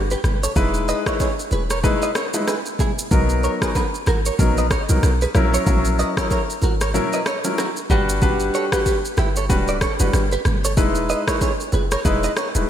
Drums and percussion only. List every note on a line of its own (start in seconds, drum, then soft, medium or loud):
0.11 shaker medium
0.24 cross-stick medium
0.24 low conga medium
0.24 shaker soft
0.43 shaker loud
0.56 kick loud
0.56 low conga medium
0.56 shaker medium
0.74 shaker medium
0.88 shaker medium
1.06 kick medium
1.06 cross-stick loud
1.06 shaker medium
1.20 kick medium
1.20 high bongo medium
1.20 shaker medium
1.39 shaker medium
1.51 high bongo soft
1.51 low bongo medium
1.51 shaker soft
1.70 cross-stick medium
1.70 shaker medium
1.84 kick medium
1.84 low conga medium
1.84 shaker medium
2.02 shaker medium
2.15 cross-stick loud
2.15 high bongo medium
2.15 shaker medium
2.34 low bongo medium
2.34 shaker medium
2.48 cross-stick medium
2.48 high bongo medium
2.48 shaker medium
2.66 shaker medium
2.79 kick medium
2.79 low conga medium
2.79 shaker soft
2.99 shaker loud
3.11 kick loud
3.11 low conga medium
3.11 shaker medium
3.29 shaker medium
3.44 shaker medium
3.62 kick medium
3.62 cross-stick loud
3.62 shaker medium
3.75 kick medium
3.75 high bongo medium
3.75 shaker medium
3.94 shaker medium
4.06 cross-stick medium
4.06 high bongo soft
4.06 low bongo medium
4.06 shaker soft
4.25 shaker medium
4.39 kick loud
4.39 low conga medium
4.39 shaker medium
4.57 shaker soft
4.71 kick loud
4.71 cross-stick loud
4.71 high bongo medium
4.71 shaker medium
4.89 low bongo medium
4.89 shaker medium
5.03 cross-stick medium
5.03 high bongo medium
5.03 shaker medium
5.21 shaker medium
5.35 cross-stick medium
5.35 low conga medium
5.35 shaker soft
5.54 shaker loud
5.67 kick loud
5.67 low conga medium
5.67 shaker medium
5.85 shaker medium
5.99 shaker medium
6.17 kick medium
6.17 cross-stick loud
6.17 shaker medium
6.31 kick medium
6.31 high bongo medium
6.31 shaker medium
6.50 shaker medium
6.62 high bongo soft
6.62 low bongo medium
6.62 shaker soft
6.81 cross-stick loud
6.81 shaker medium
6.94 low conga medium
6.94 shaker medium
7.13 shaker medium
7.26 cross-stick loud
7.26 high bongo medium
7.26 shaker medium
7.44 low bongo medium
7.44 shaker loud
7.58 cross-stick medium
7.58 high bongo medium
7.58 shaker medium
7.76 shaker medium
7.90 kick medium
7.90 low conga medium
7.90 shaker soft
8.09 shaker loud
8.22 kick loud
8.22 low conga medium
8.22 shaker medium
8.40 shaker medium
8.54 shaker medium
8.72 kick medium
8.72 cross-stick loud
8.72 shaker medium
8.86 kick medium
8.86 high bongo medium
8.86 shaker medium
9.05 shaker medium
9.17 cross-stick medium
9.17 high bongo soft
9.17 low bongo medium
9.17 shaker soft
9.36 shaker medium
9.50 kick loud
9.50 low conga medium
9.50 shaker medium
9.68 shaker medium
9.81 kick medium
9.81 cross-stick loud
9.81 high bongo medium
9.81 shaker medium
9.99 low bongo medium
9.99 shaker medium
10.13 cross-stick medium
10.13 high bongo medium
10.13 shaker medium
10.32 shaker medium
10.45 cross-stick medium
10.45 low conga medium
10.45 shaker medium
10.64 shaker loud
10.77 kick loud
10.77 low conga medium
10.77 shaker medium
10.95 shaker medium
11.09 shaker medium
11.28 kick medium
11.28 cross-stick loud
11.28 shaker medium
11.41 kick medium
11.41 high bongo medium
11.41 shaker medium
11.60 shaker soft
11.72 high bongo soft
11.72 low bongo medium
11.72 shaker soft
11.91 cross-stick loud
11.91 shaker medium
12.05 kick loud
12.05 low conga medium
12.05 shaker medium
12.23 shaker medium
12.37 cross-stick loud
12.37 high bongo medium
12.37 shaker medium
12.55 low bongo medium
12.55 shaker medium